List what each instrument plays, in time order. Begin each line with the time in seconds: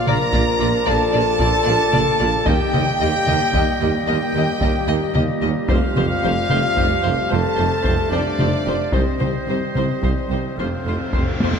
Already playing: trombone section F3 D4, woodwind section A#3 F4 D5
0.06 double bass section A#1, tuba A#1, cello section A#2, viola section A#3 F4, french horn section A#4, violin section D5 A#5, trumpet section A#5, taiko mid
0.32 tuba A#1, double bass section A#1, cello section A#2, viola section A#3 F4, violin section D5, taiko
0.59 tuba A#1, double bass section A#1, cello section A#2, viola section A#3 F4, violin section D5
0.85 double bass section A#1, tuba A#1, cello section A#2, viola section A#3 F4, french horn section A4, violin section D5 A5, trumpet section A5
1.12 tuba A#1, double bass section A#1, cello section A#2, viola section A#3 F4, violin section D5
1.38 double bass section A#1, tuba A#1, cello section A#2, viola section A#3 F4, violin section D5, taiko
1.63 cello section A#2, violin section D5
1.67 tuba A#1, double bass section A#1, viola section A#3 F4
1.92 double bass section A#1, tuba A#1, cello section A#2, viola section A#3 F4, violin section D5, taiko mid
2.19 tuba A#1, double bass section A#1, cello section A#2, viola section A#3 F4, violin section D5
2.45 tuba D#2, double bass section D#2, cello section D#2, trombone section A#2 G3, viola section A#3 G4, woodwind section G4 D#5, violin section D#5 G5, trumpet section G5, taiko
2.50 french horn section G4
2.73 tuba D#2, cello section D#2, double bass section D#2, viola section A#3 G4, violin section D#5, taiko mid
3.00 tuba D#2, cello section D#2, double bass section D#2, viola section A#3 G4, violin section D#5
3.27 cello section D#2, tuba D#2, double bass section D#2, viola section A#3 G4, violin section D#5, taiko mid
3.53 cello section D#2, double bass section D#2, tuba D#2, viola section A#3 G4, violin section D#5, taiko
3.81 cello section D#2, tuba D#2, double bass section D#2, viola section A#3 G4, violin section D#5
4.07 double bass section D#2, cello section D#2, tuba D#2, viola section A#3 G4, french horn section G4, violin section D#5 G5, trumpet section G5
4.34 double bass section D#2, tuba D#2, cello section D#2, viola section A#3 G4, violin section D#5
4.60 double bass section D#2, tuba D#2, cello section D#2, viola section A#3 G4, violin section D#5, taiko
4.87 double bass section D#2, tuba D#2, cello section D#2, viola section A#3 G4, violin section D#5
5.13 double bass section D#2, cello section D#2, tuba D#2, viola section A#3 G4, violin section D#5, taiko mid
5.41 tuba D#2, double bass section D#2, cello section D#2, viola section A#3 G4, violin section D#5
5.66 tuba F1, double bass section F1, cello section F2, viola section A3 G4, woodwind section A3 C5 F5, french horn section F4, violin section C5 F5, trumpet section F5, taiko
5.96 tuba F1, double bass section F1, cello section F2, viola section A3 G4, violin section C5, taiko mid
6.23 tuba F1, double bass section F1, cello section F2, viola section A3 G4, violin section C5
6.49 tuba F1, double bass section F1, cello section F2, trombone section A3, viola section A3 G4, violin section C5, taiko mid
6.77 double bass section F1, tuba F1, cello section F2, viola section A3 G4, violin section C5, taiko
7.03 tuba F1, double bass section F1, cello section F2, viola section A3 G4, violin section C5
7.29 tuba F1, double bass section F1, cello section F2, viola section A3 G4, french horn section A4, violin section C5 A5, trumpet section A5
7.56 double bass section F1, tuba F1, cello section F2, viola section A3 G4, violin section C5
7.84 double bass section F1, tuba F1, cello section F2, viola section A3 G4, violin section C5, taiko
8.10 tuba F1, double bass section F1, cello section F2, viola section A3 G4, french horn section D4, violin section C5 D5, trumpet section D5
8.39 tuba F1, double bass section F1, cello section F2, viola section A3 G4, violin section C5, taiko mid
8.65 tuba F1, double bass section F1, cello section F2, viola section A3 G4, violin section C5
8.91 double bass section C2, tuba C2, cello section C2, trombone section D#3 G3, viola section G3 D#4, french horn section C4, woodwind section C4 G4 D#5, violin section C5, trumpet section C5, taiko, reverse cymbal
8.97 violin section C5
9.20 double bass section C2, cello section C2, tuba C2, viola section G3 D#4, violin section C5, taiko mid
9.48 cello section C2, double bass section C2, tuba C2, viola section G3 D#4, violin section C5
9.75 tuba C2, cello section C2, double bass section C2, viola section G3 D#4, violin section C5, taiko mid
10.02 tuba C2, cello section C2, double bass section C2, viola section G3 D#4, violin section C5, taiko
10.29 double bass section C2, tuba C2, cello section C2, viola section G3 D#4, violin section C5
10.56 tuba F1, double bass section F1, cello section F2, trombone section F3 A3, french horn section C4, viola section F4, woodwind section A4 F5, violin section C5, trumpet section C5
10.60 timpani F2, viola section A3
10.68 timpani F2
10.76 timpani F2
10.84 double bass section F1, tuba F1, timpani F2, cello section F2, viola section A3 F4, violin section C5
10.91 timpani F2
10.99 timpani F2
11.05 timpani F2
11.13 tuba F1, double bass section F1, timpani F2, cello section F2, viola section A3 F4, violin section C5, taiko
11.22 timpani F2
11.30 timpani F2
11.37 timpani F2, taiko high
11.42 tuba F1, double bass section F1, cello section F2, timpani F2, viola section A3 F4, violin section C5
11.53 timpani F2